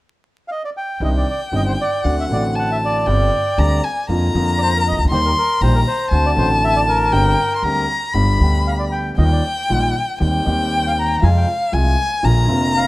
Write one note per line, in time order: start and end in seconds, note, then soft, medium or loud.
0.48 0.62 D#5 medium
0.48 0.50 F5 soft
0.65 0.70 D5 medium
0.77 1.02 G5 medium
1.00 1.22 C2 medium
1.00 1.23 C2 medium
1.00 1.22 C3 medium
1.00 1.22 D#3 medium
1.00 1.22 C4 medium
1.00 1.23 D4 medium
1.00 1.23 G4 medium
1.00 2.05 G5 medium
1.04 1.09 D#5 medium
1.17 1.27 D5 medium
1.29 1.40 D5 medium
1.52 1.74 G1 medium
1.52 1.74 G2 medium
1.52 1.74 D#3 soft
1.52 1.74 C4 soft
1.52 1.74 D4 soft
1.52 1.74 G4 medium
1.52 1.61 D#5 medium
1.67 1.73 C5 medium
1.81 2.16 D5 medium
2.04 2.26 D2 medium
2.04 2.26 D3 medium
2.04 2.26 A3 soft
2.04 2.26 C4 soft
2.04 2.26 F#4 medium
2.04 2.57 F#5 medium
2.20 2.25 E5 medium
2.29 3.03 A1 medium
2.29 3.04 A1 medium
2.29 3.04 A2 medium
2.29 3.03 D3 medium
2.29 3.03 A3 medium
2.29 3.04 C4 soft
2.29 2.44 D5 medium
2.33 3.05 F#4 medium
2.55 2.70 F#5 medium
2.55 3.08 A5 medium
2.72 2.77 E5 medium
2.85 3.81 D5 medium
3.06 3.28 G1 medium
3.06 3.28 G2 medium
3.06 3.28 D3 medium
3.06 3.28 G3 medium
3.06 3.28 C4 medium
3.06 3.29 G4 medium
3.06 3.60 G5 medium
3.58 3.79 D2 medium
3.58 3.80 D2 medium
3.58 3.79 D3 medium
3.58 3.79 G3 soft
3.58 3.80 C4 medium
3.58 3.80 G4 medium
3.58 3.86 A#5 medium
3.84 4.09 G#5 medium
4.09 4.30 F2 medium
4.09 4.30 D3 medium
4.09 4.30 F3 medium
4.09 4.30 A#3 medium
4.09 4.30 F4 medium
4.09 5.07 A#5 medium
4.33 4.91 F2 medium
4.33 5.07 F2 medium
4.33 5.06 D3 medium
4.33 5.07 F3 medium
4.33 5.08 A#3 medium
4.37 5.08 F4 medium
4.58 4.60 D5 soft
4.62 4.73 C5 medium
4.76 4.81 A#4 medium
4.88 4.98 C2 soft
4.88 4.99 D#5 medium
4.93 4.99 C2 soft
4.98 5.03 C#2 soft
4.98 5.04 C#2 soft
5.04 5.10 D2 medium
5.04 5.11 D2 medium
5.11 5.32 D#2 medium
5.11 5.32 D#3 medium
5.11 5.32 G3 medium
5.11 5.32 A#3 medium
5.11 5.32 G4 medium
5.11 5.18 C5 medium
5.11 5.63 C6 medium
5.25 5.31 A#4 medium
5.38 5.60 A#4 medium
5.61 5.82 A#1 medium
5.61 5.83 A#1 medium
5.61 5.83 A#2 medium
5.61 5.82 D#3 medium
5.61 5.82 G3 medium
5.61 5.83 A#3 soft
5.61 5.83 G4 medium
5.61 5.75 C5 medium
5.61 6.11 A#5 medium
5.75 5.80 A#4 medium
5.87 6.25 C5 medium
6.11 6.32 D2 medium
6.11 6.33 D2 medium
6.11 6.33 D3 medium
6.11 6.33 A3 medium
6.11 6.33 C4 soft
6.11 6.33 F#4 medium
6.11 7.14 A5 medium
6.26 6.31 D5 medium
6.35 7.08 A1 medium
6.35 7.09 A1 medium
6.35 7.09 A2 medium
6.35 7.08 D3 medium
6.35 7.08 A3 medium
6.35 7.09 C4 medium
6.35 6.49 C5 medium
6.39 7.10 F#4 medium
6.64 6.75 E5 medium
6.76 6.81 D5 medium
6.88 7.86 A#4 medium
7.12 7.34 G1 medium
7.12 7.34 G2 medium
7.12 7.34 D3 medium
7.12 7.34 G3 medium
7.12 7.34 C4 soft
7.12 7.34 G4 medium
7.12 7.55 G5 medium
7.56 7.65 C6 soft
7.63 7.85 D2 medium
7.63 7.85 D3 medium
7.63 7.85 G3 soft
7.63 7.85 C4 soft
7.63 7.86 G4 medium
7.63 8.15 A#5 medium
8.14 8.36 G1 medium
8.14 8.36 G2 medium
8.14 8.36 D3 medium
8.14 8.36 G3 soft
8.14 8.36 B3 soft
8.14 8.36 G4 medium
8.14 8.92 B5 medium
8.38 9.14 D2 medium
8.38 8.40 D3 medium
8.38 9.14 D3 medium
8.38 9.14 G3 medium
8.38 9.15 B3 medium
8.43 9.16 G4 medium
8.67 8.73 F5 medium
8.79 8.85 D5 medium
8.92 9.16 G5 medium
9.18 9.40 D#2 medium
9.18 9.40 D#3 medium
9.18 9.40 G3 medium
9.18 9.40 A#3 medium
9.18 9.40 F4 medium
9.18 9.24 D#5 medium
9.18 10.17 G5 medium
9.32 9.44 D5 medium
9.69 9.91 A#1 medium
9.69 9.92 A#1 medium
9.69 9.92 A#2 medium
9.69 9.91 D#3 medium
9.69 9.91 G3 medium
9.69 9.92 A#3 soft
9.69 9.92 F4 medium
10.20 10.42 D#2 medium
10.20 10.43 D#2 medium
10.20 10.42 D#3 medium
10.20 10.42 G3 soft
10.20 10.42 C4 soft
10.20 10.42 G4 medium
10.20 11.19 G5 medium
10.44 11.19 D#2 medium
10.44 10.46 D#3 medium
10.44 11.19 D#3 medium
10.44 11.19 G3 medium
10.44 11.19 C4 medium
10.48 11.20 G4 medium
10.75 10.86 G5 medium
10.87 10.92 F5 medium
10.99 11.24 A#5 medium
11.22 11.44 F2 medium
11.22 11.44 C3 medium
11.22 11.44 F3 medium
11.22 11.44 G#3 medium
11.22 11.44 F4 medium
11.22 11.75 F5 medium
11.22 11.29 G#5 medium
11.37 11.48 G5 medium
11.72 11.94 C2 medium
11.72 11.94 C3 medium
11.72 11.94 F3 soft
11.72 11.94 G#3 soft
11.72 11.94 F4 medium
11.72 12.26 G#5 medium
12.23 12.45 A#1 medium
12.23 12.45 A#2 medium
12.23 12.45 D3 medium
12.23 12.45 F3 soft
12.23 12.45 A#3 soft
12.23 12.45 F4 medium
12.23 12.87 A#5 medium
12.46 12.87 F1 medium
12.46 12.87 F2 medium
12.46 12.87 D3 medium
12.46 12.87 F3 medium
12.46 12.87 A#3 medium
12.51 12.87 F4 medium
12.77 12.87 F5 medium